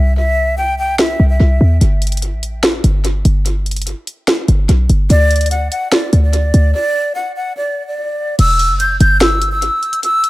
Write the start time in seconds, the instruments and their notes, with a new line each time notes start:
Already playing: 808-style bass C2, flute E5
0.17 flute E5
0.58 flute G5
0.79 flute G5
0.99 flute E5, snare
1.20 808-style bass C2
1.29 flute E5
1.40 808-style bass C2
1.61 808-style bass E2
1.81 808-style bass G1, closed hi-hat
2.02 closed hi-hat
2.07 closed hi-hat
2.12 closed hi-hat
2.17 closed hi-hat
2.22 closed hi-hat
2.33 808-style bass A1
2.43 closed hi-hat
2.63 snare, closed hi-hat
2.84 808-style bass G1, closed hi-hat
3.05 closed hi-hat
3.25 808-style bass G1, closed hi-hat
3.46 closed hi-hat
3.66 closed hi-hat
3.71 closed hi-hat
3.76 closed hi-hat
3.82 closed hi-hat
3.87 closed hi-hat
4.07 closed hi-hat
4.28 snare, closed hi-hat
4.48 808-style bass G1, closed hi-hat
4.69 808-style bass B1, closed hi-hat
4.89 808-style bass G1, closed hi-hat
5.10 808-style bass D2, flute D5, closed hi-hat
5.31 closed hi-hat
5.36 closed hi-hat
5.41 closed hi-hat
5.46 closed hi-hat
5.51 flute F#5, closed hi-hat
5.71 flute F#5, closed hi-hat
5.92 flute D5, snare, closed hi-hat
6.13 808-style bass D2, closed hi-hat
6.23 flute D5
6.33 closed hi-hat
6.54 808-style bass D2, closed hi-hat
6.74 flute D5
7.15 flute F#5
7.36 flute F#5
7.57 flute D5
7.87 flute D5
8.39 808-style bass E1, flute E6, closed hi-hat, crash
8.59 open hi-hat
8.70 808-style bass F#1
8.80 flute G6, closed hi-hat
9.00 808-style bass G1, flute G6, closed hi-hat
9.21 flute E6, snare, closed hi-hat
9.42 closed hi-hat
9.52 flute E6
9.62 closed hi-hat
9.83 closed hi-hat
9.93 closed hi-hat
10.03 flute E6, closed hi-hat
10.24 closed hi-hat